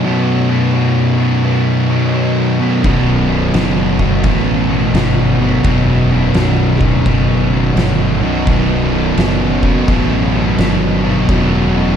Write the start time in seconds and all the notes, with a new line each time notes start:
0.04 B1 F#2 B2
0.49 B1 F#2 B2
0.73 B1 F#2 B2
1.17 B1 F#2 B2
1.43 B1 F#2 B2
1.89 B1 F#2 B2
2.13 B1 F#2 B2
2.59 B1 F#2 B2
2.84 B0 B1 F#2 B2, kick, crash
3.29 B1 F#2 B2
3.54 F#1 B1 F#2 B2, snare, crash
3.99 B1 F#2 B2, kick
4.24 A1 B1 F#2 B2, kick, crash
4.69 B1 F#2 B2
4.94 G1 B1 F#2 B2, snare, crash
5.40 B1 F#2 B2
5.64 E1 B1 F#2 B2, kick, crash
6.12 B1 F#2 B2
6.34 B0 B1 F#2 B2, snare, crash
6.80 D1 B1 F#2 B2, kick
7.06 F#1 B1 F#2 B2, kick, crash
7.52 B1 F#2 B2
7.76 G1 B1 F#2 B2, snare, crash
8.21 B1 F#2 B2
8.47 B0 B1 F#2 B2, kick, crash
8.93 B1 F#2 B2
9.17 F#1 B1 F#2 B2, snare, crash
9.63 B1 F#2 B2, kick
9.88 A1 B1 F#2 B2, kick, crash
10.33 B1 F#2 B2
10.58 G1 B1 F#2 B2, snare, crash
11.04 B1 F#2 B2
11.28 E1 B1 F#2 B2, kick, crash
11.75 B1 F#2 B2